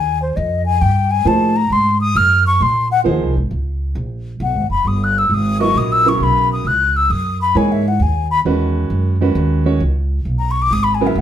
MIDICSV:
0, 0, Header, 1, 4, 480
1, 0, Start_track
1, 0, Tempo, 449775
1, 1825, Time_signature, 4, 2, 24, 8
1, 11965, End_track
2, 0, Start_track
2, 0, Title_t, "Flute"
2, 0, Program_c, 0, 73
2, 0, Note_on_c, 0, 80, 97
2, 229, Note_off_c, 0, 80, 0
2, 236, Note_on_c, 0, 72, 54
2, 388, Note_on_c, 0, 75, 81
2, 404, Note_off_c, 0, 72, 0
2, 695, Note_off_c, 0, 75, 0
2, 701, Note_on_c, 0, 80, 104
2, 869, Note_on_c, 0, 79, 88
2, 885, Note_off_c, 0, 80, 0
2, 1184, Note_on_c, 0, 80, 105
2, 1200, Note_off_c, 0, 79, 0
2, 1360, Note_on_c, 0, 81, 89
2, 1376, Note_off_c, 0, 80, 0
2, 1668, Note_on_c, 0, 82, 102
2, 1684, Note_off_c, 0, 81, 0
2, 1841, Note_on_c, 0, 84, 95
2, 1857, Note_off_c, 0, 82, 0
2, 2137, Note_off_c, 0, 84, 0
2, 2143, Note_on_c, 0, 87, 107
2, 2313, Note_on_c, 0, 89, 115
2, 2329, Note_off_c, 0, 87, 0
2, 2628, Note_off_c, 0, 89, 0
2, 2635, Note_on_c, 0, 85, 100
2, 2801, Note_on_c, 0, 84, 90
2, 2817, Note_off_c, 0, 85, 0
2, 3102, Note_off_c, 0, 84, 0
2, 3109, Note_on_c, 0, 78, 97
2, 3203, Note_off_c, 0, 78, 0
2, 4724, Note_on_c, 0, 78, 73
2, 5011, Note_off_c, 0, 78, 0
2, 5025, Note_on_c, 0, 83, 88
2, 5203, Note_on_c, 0, 87, 86
2, 5219, Note_off_c, 0, 83, 0
2, 5378, Note_on_c, 0, 90, 87
2, 5394, Note_off_c, 0, 87, 0
2, 5531, Note_on_c, 0, 88, 78
2, 5547, Note_off_c, 0, 90, 0
2, 5699, Note_on_c, 0, 87, 85
2, 5715, Note_off_c, 0, 88, 0
2, 5982, Note_off_c, 0, 87, 0
2, 5989, Note_on_c, 0, 85, 91
2, 6166, Note_on_c, 0, 87, 89
2, 6182, Note_off_c, 0, 85, 0
2, 6320, Note_on_c, 0, 88, 92
2, 6336, Note_off_c, 0, 87, 0
2, 6495, Note_on_c, 0, 85, 88
2, 6511, Note_off_c, 0, 88, 0
2, 6650, Note_on_c, 0, 83, 83
2, 6666, Note_off_c, 0, 85, 0
2, 6957, Note_off_c, 0, 83, 0
2, 6966, Note_on_c, 0, 87, 90
2, 7121, Note_on_c, 0, 90, 94
2, 7137, Note_off_c, 0, 87, 0
2, 7433, Note_on_c, 0, 88, 89
2, 7449, Note_off_c, 0, 90, 0
2, 7586, Note_on_c, 0, 87, 90
2, 7602, Note_off_c, 0, 88, 0
2, 7905, Note_off_c, 0, 87, 0
2, 7913, Note_on_c, 0, 83, 89
2, 8079, Note_on_c, 0, 80, 81
2, 8095, Note_off_c, 0, 83, 0
2, 8239, Note_on_c, 0, 76, 75
2, 8255, Note_off_c, 0, 80, 0
2, 8408, Note_on_c, 0, 78, 79
2, 8424, Note_off_c, 0, 76, 0
2, 8564, Note_on_c, 0, 80, 75
2, 8580, Note_off_c, 0, 78, 0
2, 8860, Note_off_c, 0, 80, 0
2, 8866, Note_on_c, 0, 83, 99
2, 8963, Note_off_c, 0, 83, 0
2, 11085, Note_on_c, 0, 82, 74
2, 11218, Note_on_c, 0, 85, 85
2, 11234, Note_off_c, 0, 82, 0
2, 11334, Note_on_c, 0, 86, 93
2, 11350, Note_off_c, 0, 85, 0
2, 11452, Note_on_c, 0, 87, 102
2, 11468, Note_off_c, 0, 86, 0
2, 11563, Note_on_c, 0, 83, 86
2, 11579, Note_off_c, 0, 87, 0
2, 11682, Note_on_c, 0, 80, 91
2, 11698, Note_off_c, 0, 83, 0
2, 11812, Note_on_c, 0, 76, 79
2, 11828, Note_off_c, 0, 80, 0
2, 11953, Note_off_c, 0, 76, 0
2, 11965, End_track
3, 0, Start_track
3, 0, Title_t, "Grand piano"
3, 0, Program_c, 1, 0
3, 1335, Note_on_c, 1, 58, 53
3, 1338, Note_on_c, 1, 53, 60
3, 1341, Note_on_c, 1, 63, 50
3, 1349, Note_on_c, 1, 68, 52
3, 1351, Note_on_c, 1, 72, 65
3, 1627, Note_off_c, 1, 58, 0
3, 1629, Note_off_c, 1, 53, 0
3, 1630, Note_off_c, 1, 63, 0
3, 1635, Note_off_c, 1, 68, 0
3, 1635, Note_off_c, 1, 72, 0
3, 3242, Note_on_c, 1, 53, 65
3, 3248, Note_on_c, 1, 58, 61
3, 3253, Note_on_c, 1, 63, 63
3, 3256, Note_on_c, 1, 68, 62
3, 3261, Note_on_c, 1, 72, 78
3, 3540, Note_off_c, 1, 53, 0
3, 3543, Note_off_c, 1, 58, 0
3, 3546, Note_off_c, 1, 63, 0
3, 3547, Note_off_c, 1, 68, 0
3, 3550, Note_off_c, 1, 72, 0
3, 5977, Note_on_c, 1, 54, 71
3, 5977, Note_on_c, 1, 64, 62
3, 5980, Note_on_c, 1, 59, 65
3, 5980, Note_on_c, 1, 75, 81
3, 5984, Note_on_c, 1, 70, 65
3, 6428, Note_off_c, 1, 54, 0
3, 6428, Note_off_c, 1, 64, 0
3, 6430, Note_off_c, 1, 59, 0
3, 6430, Note_off_c, 1, 75, 0
3, 6432, Note_off_c, 1, 70, 0
3, 6451, Note_on_c, 1, 49, 65
3, 6462, Note_on_c, 1, 54, 60
3, 6463, Note_on_c, 1, 59, 62
3, 6467, Note_on_c, 1, 64, 58
3, 6471, Note_on_c, 1, 70, 65
3, 7066, Note_off_c, 1, 49, 0
3, 7072, Note_off_c, 1, 54, 0
3, 7072, Note_off_c, 1, 59, 0
3, 7074, Note_off_c, 1, 64, 0
3, 7076, Note_off_c, 1, 70, 0
3, 8058, Note_on_c, 1, 52, 65
3, 8062, Note_on_c, 1, 58, 57
3, 8064, Note_on_c, 1, 68, 55
3, 8066, Note_on_c, 1, 63, 58
3, 8070, Note_on_c, 1, 73, 74
3, 8350, Note_off_c, 1, 52, 0
3, 8352, Note_off_c, 1, 58, 0
3, 8353, Note_off_c, 1, 68, 0
3, 8354, Note_off_c, 1, 63, 0
3, 8355, Note_off_c, 1, 73, 0
3, 9018, Note_on_c, 1, 51, 67
3, 9026, Note_on_c, 1, 56, 60
3, 9026, Note_on_c, 1, 61, 62
3, 9028, Note_on_c, 1, 71, 75
3, 9030, Note_on_c, 1, 66, 62
3, 9759, Note_off_c, 1, 51, 0
3, 9763, Note_off_c, 1, 56, 0
3, 9763, Note_off_c, 1, 61, 0
3, 9764, Note_off_c, 1, 71, 0
3, 9765, Note_off_c, 1, 66, 0
3, 9829, Note_on_c, 1, 56, 61
3, 9832, Note_on_c, 1, 51, 68
3, 9836, Note_on_c, 1, 61, 61
3, 9838, Note_on_c, 1, 66, 64
3, 9841, Note_on_c, 1, 71, 73
3, 10277, Note_off_c, 1, 56, 0
3, 10278, Note_off_c, 1, 51, 0
3, 10281, Note_off_c, 1, 61, 0
3, 10281, Note_off_c, 1, 66, 0
3, 10283, Note_off_c, 1, 71, 0
3, 10302, Note_on_c, 1, 51, 59
3, 10305, Note_on_c, 1, 56, 57
3, 10306, Note_on_c, 1, 61, 58
3, 10311, Note_on_c, 1, 66, 54
3, 10312, Note_on_c, 1, 73, 70
3, 10450, Note_off_c, 1, 51, 0
3, 10451, Note_off_c, 1, 56, 0
3, 10452, Note_off_c, 1, 61, 0
3, 10454, Note_off_c, 1, 66, 0
3, 10454, Note_off_c, 1, 73, 0
3, 11748, Note_on_c, 1, 49, 71
3, 11752, Note_on_c, 1, 54, 61
3, 11753, Note_on_c, 1, 59, 61
3, 11757, Note_on_c, 1, 64, 62
3, 11757, Note_on_c, 1, 70, 74
3, 11894, Note_off_c, 1, 49, 0
3, 11895, Note_off_c, 1, 54, 0
3, 11896, Note_off_c, 1, 59, 0
3, 11898, Note_off_c, 1, 64, 0
3, 11898, Note_off_c, 1, 70, 0
3, 11965, End_track
4, 0, Start_track
4, 0, Title_t, "Upright bass"
4, 0, Program_c, 2, 32
4, 0, Note_on_c, 2, 39, 88
4, 376, Note_off_c, 2, 39, 0
4, 393, Note_on_c, 2, 41, 93
4, 855, Note_off_c, 2, 41, 0
4, 869, Note_on_c, 2, 43, 96
4, 1333, Note_off_c, 2, 43, 0
4, 1338, Note_on_c, 2, 45, 90
4, 1807, Note_off_c, 2, 45, 0
4, 1817, Note_on_c, 2, 44, 85
4, 2286, Note_off_c, 2, 44, 0
4, 2298, Note_on_c, 2, 42, 93
4, 2766, Note_off_c, 2, 42, 0
4, 2780, Note_on_c, 2, 46, 92
4, 3247, Note_off_c, 2, 46, 0
4, 3263, Note_on_c, 2, 39, 88
4, 3422, Note_off_c, 2, 39, 0
4, 3422, Note_on_c, 2, 36, 53
4, 3582, Note_off_c, 2, 36, 0
4, 3588, Note_on_c, 2, 32, 62
4, 3734, Note_off_c, 2, 32, 0
4, 3743, Note_on_c, 2, 37, 76
4, 4208, Note_off_c, 2, 37, 0
4, 4219, Note_on_c, 2, 34, 82
4, 4686, Note_off_c, 2, 34, 0
4, 4696, Note_on_c, 2, 35, 87
4, 4854, Note_off_c, 2, 35, 0
4, 4854, Note_on_c, 2, 32, 53
4, 5007, Note_off_c, 2, 32, 0
4, 5013, Note_on_c, 2, 30, 64
4, 5166, Note_off_c, 2, 30, 0
4, 5173, Note_on_c, 2, 31, 84
4, 5644, Note_off_c, 2, 31, 0
4, 5652, Note_on_c, 2, 32, 76
4, 6123, Note_off_c, 2, 32, 0
4, 6134, Note_on_c, 2, 34, 91
4, 6605, Note_off_c, 2, 34, 0
4, 6620, Note_on_c, 2, 35, 86
4, 7088, Note_off_c, 2, 35, 0
4, 7092, Note_on_c, 2, 37, 83
4, 7564, Note_off_c, 2, 37, 0
4, 7576, Note_on_c, 2, 42, 77
4, 8046, Note_off_c, 2, 42, 0
4, 8058, Note_on_c, 2, 44, 88
4, 8528, Note_off_c, 2, 44, 0
4, 8534, Note_on_c, 2, 39, 89
4, 9006, Note_off_c, 2, 39, 0
4, 9024, Note_on_c, 2, 40, 80
4, 9491, Note_off_c, 2, 40, 0
4, 9498, Note_on_c, 2, 42, 85
4, 9969, Note_off_c, 2, 42, 0
4, 9980, Note_on_c, 2, 39, 93
4, 10450, Note_off_c, 2, 39, 0
4, 10461, Note_on_c, 2, 37, 86
4, 10931, Note_off_c, 2, 37, 0
4, 10941, Note_on_c, 2, 35, 77
4, 11411, Note_off_c, 2, 35, 0
4, 11426, Note_on_c, 2, 32, 78
4, 11894, Note_off_c, 2, 32, 0
4, 11905, Note_on_c, 2, 28, 88
4, 11965, Note_off_c, 2, 28, 0
4, 11965, End_track
0, 0, End_of_file